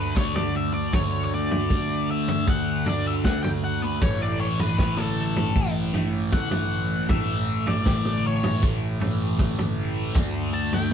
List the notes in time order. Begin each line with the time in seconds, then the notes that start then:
Already playing: D2 D3 A3 D4 B4
0.16 D3 A3 D4 C#5, kick, mid tom
0.35 D5, floor tom, mid tom
0.57 E5
0.74 D5
0.93 D2 D3 A3 D4 C#5, kick, floor tom
1.24 C#5
1.34 D5
1.51 floor tom
1.70 D2, kick
2.11 E5
2.28 floor tom, mid tom
2.47 D2 F#5, kick
2.85 D3 A3 D4 D5, floor tom
3.07 E5
3.25 D3 A3 D4 F#5, kick, snare, mid tom
3.43 G5, floor tom, mid tom
3.64 F#5
3.82 B4
4.01 A1 A2 E3 A3 C#5, kick, floor tom
4.22 D5
4.41 C#5
4.59 B4, floor tom
4.78 A1, kick, snare
4.97 A4, mid tom
5.36 floor tom, mid tom
5.56 A1, kick
5.94 A2 E3 A3, floor tom
6.32 A2 E3 A3 F#5, kick, mid tom
6.51 floor tom, mid tom
7.09 A1 A2 E3 A3 E5, kick, floor tom
7.67 D5, floor tom
7.86 A1, kick, snare
8.05 mid tom
8.27 C#5
8.44 floor tom, mid tom
8.63 A1, kick
9.00 A2 E3 A3, floor tom
9.38 A2 E3 A3, kick, mid tom
9.59 floor tom, mid tom
10.14 D2 D3 A3 D4, kick, floor tom
10.54 A5
10.73 G5, floor tom